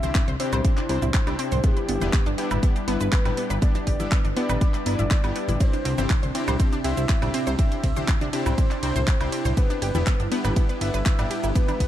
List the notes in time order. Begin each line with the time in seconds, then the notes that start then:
Already playing: C3 C4 D4 E4 E5
0.03 C2 C4 D4 E4 G4 C5 C6, closed hi-hat, high conga, shaker
0.15 C4 C5, kick, clap, closed hi-hat, shaker
0.28 C2 C5 C6, closed hi-hat, high conga, shaker
0.40 C4 D4 E4 G4 C5, open hi-hat
0.52 C2 C5 C6, closed hi-hat, low conga, high woodblock, shaker
0.65 C4 D4 E4 G4 C5, kick, closed hi-hat, shaker
0.77 D4 D5, clap, closed hi-hat, shaker
0.89 C2 C4 D4 E4 G4 C5 G5, open hi-hat, high woodblock
1.02 C2 E4 E5, closed hi-hat, low conga, shaker
1.14 C4 C5, kick, clap, closed hi-hat, shaker
1.27 C2 C4 D4 E4 G4 D5, closed hi-hat, high woodblock, shaker
1.39 C4 C5, open hi-hat
1.52 C2 C5 C6, open hi-hat, low conga, shaker
1.64 G3 B3 D4 E4 G4 B4, kick, closed hi-hat, shaker
1.77 B4 B5, closed hi-hat, shaker
1.89 G1 B3 B4, open hi-hat
2.00 E1 B3 D4 E4 G4 B4 B5, closed hi-hat, high conga, shaker
2.13 B3 B4, kick, clap, closed hi-hat, shaker
2.26 G1 D4 D5, closed hi-hat, high conga, shaker
2.38 B3 D4 E4 G4 G5, open hi-hat
2.51 G1 E4 E5, closed hi-hat, low conga, high woodblock, shaker
2.63 B3 D4 E4 G4 B4, kick, closed hi-hat, shaker
2.76 D4 D5, closed hi-hat, shaker
2.88 G1 B3 D4 E4 B4, open hi-hat
3.01 G1 B4 B5, closed hi-hat, shaker
3.12 B3 B4, kick, clap, closed hi-hat, shaker
3.25 G1 B3 D4 E4 G4 B4 B5, closed hi-hat, low conga, high woodblock, shaker
3.37 B3 B4, open hi-hat
3.50 G1 B4 B5, closed hi-hat, high woodblock, shaker
3.62 B3 D4 E4 G4 B4 D5, kick, closed hi-hat, shaker
3.75 D4 D5, closed hi-hat, high conga, shaker
3.87 G1 G4 G5, kick, open hi-hat
4.00 G1 B3 D4 E4 G4 E5, closed hi-hat, high conga, shaker
4.12 B3 B4, kick, clap, closed hi-hat, shaker
4.25 G1 D4 D5, closed hi-hat, high conga, shaker
4.36 B3 D4 E4 G4 B4 D5, open hi-hat
4.49 G1 B4 B5, closed hi-hat, low conga, high woodblock, shaker
4.61 B3 D4 E4 G4 B4, kick, closed hi-hat, shaker
4.74 B4 B5, clap, closed hi-hat, shaker
4.86 G1 B3 D4 E4 B4, open hi-hat, high woodblock
4.99 G1 E4 E5, closed hi-hat, low conga, shaker
5.11 E4 E5, kick, clap, closed hi-hat, shaker
5.24 G1 B3 D4 E4 G4 B4, closed hi-hat, high woodblock, shaker
5.36 B3 B4, open hi-hat
5.48 G1 E4 E5, open hi-hat, low conga, shaker
5.60 C3 C4 D4 E4 G4 C5, kick, closed hi-hat, ride, shaker
5.73 D4 D5, closed hi-hat, shaker
5.85 C2 C4 C5, open hi-hat, ride
5.98 G1 C4 D4 E4 G4 C5 C6, closed hi-hat, high conga, shaker
6.10 C4 C5, kick, clap, closed hi-hat, ride, shaker
6.23 C2 C5 C6, closed hi-hat, high conga, shaker
6.35 C4 D4 E4 G4 C5, open hi-hat, ride
6.48 C2 C5 C6, closed hi-hat, low conga, high woodblock, shaker
6.60 C4 D4 E4 G4 C5, kick, closed hi-hat, ride, shaker
6.72 D4 D5, closed hi-hat, shaker
6.84 C2 C4 D4 E4 G4 C5 E5 G5, open hi-hat, ride
6.97 C2 E4 E5, closed hi-hat, shaker
7.09 C4 C5, kick, clap, closed hi-hat, ride, shaker
7.22 C2 C4 D4 E4 G4 D5, closed hi-hat, low conga, high woodblock, shaker
7.34 C4 C5, open hi-hat, ride
7.47 C2 C5 C6, closed hi-hat, high woodblock, shaker
7.59 C4 D4 E4 G4 C5 E5, kick, closed hi-hat, ride, shaker
7.72 C5 C6, closed hi-hat, shaker
7.84 C2 C4 C5, kick, open hi-hat, ride
7.96 C2 C4 D4 E4 G4 C5 C6, closed hi-hat, high conga, shaker
8.08 C4 C5, kick, clap, closed hi-hat, ride, shaker
8.21 C2 D4 D5, closed hi-hat, high conga, shaker
8.33 C4 D4 E4 G4 C5 G5, open hi-hat, ride
8.46 C2 E4 E5, closed hi-hat, low conga, high woodblock, shaker
8.58 C4 D4 E4 G4 C5, kick, closed hi-hat, ride, shaker
8.71 D4 D5, clap, closed hi-hat, shaker
8.83 C2 C4 D4 E4 C5, open hi-hat, ride, high woodblock
8.96 C2 C5 C6, closed hi-hat, low conga, shaker
9.07 C4 C5, kick, clap, closed hi-hat, ride, shaker
9.20 C2 C4 D4 E4 G4 C5 C6, closed hi-hat, high woodblock, shaker
9.32 C4 C5, open hi-hat, ride
9.45 C2 C5 C6, open hi-hat, low conga, shaker
9.57 G3 B3 D4 E4 G4 B4, kick, closed hi-hat, ride, shaker
9.70 D4 D5, closed hi-hat, shaker
9.82 G1 G4 G5, open hi-hat, ride
9.94 E1 B3 D4 E4 G4 E5, closed hi-hat, high conga, shaker
10.07 B3 B4, kick, clap, closed hi-hat, ride, shaker
10.19 G1 D4 D5, closed hi-hat, high conga, shaker
10.31 B3 D4 E4 G4 B4, open hi-hat, ride
10.44 G1 B4 B5, closed hi-hat, low conga, high woodblock, shaker
10.56 B3 D4 E4 G4 B4, kick, closed hi-hat, ride, shaker
10.69 B4 B5, closed hi-hat, shaker
10.81 G1 B3 D4 E4 B4 E5, open hi-hat, ride
10.94 G1 B4 B5, closed hi-hat, shaker
11.06 B3 B4, kick, clap, closed hi-hat, ride, shaker
11.19 G1 B3 D4 E4 G4 D5, closed hi-hat, low conga, high woodblock, shaker
11.31 G4 G5, open hi-hat, ride
11.43 G1 E4 E5, closed hi-hat, high woodblock, shaker
11.55 B3 D4 E4 G4 B4, kick, closed hi-hat, ride, shaker
11.68 D4 D5, closed hi-hat, high conga, high woodblock, shaker
11.80 G1 B3 B4, kick, open hi-hat, ride